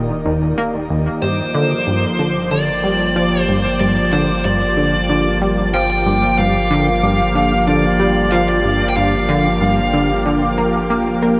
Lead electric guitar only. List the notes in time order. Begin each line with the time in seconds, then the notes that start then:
1.22 C5
2.51 D5
3.41 C5
3.81 D5
4.13 C5
4.45 D5
5.74 G5
5.90 G5
6.38 F5
7.67 D5
8.32 F5
8.48 D5
8.89 G5
8.97 F5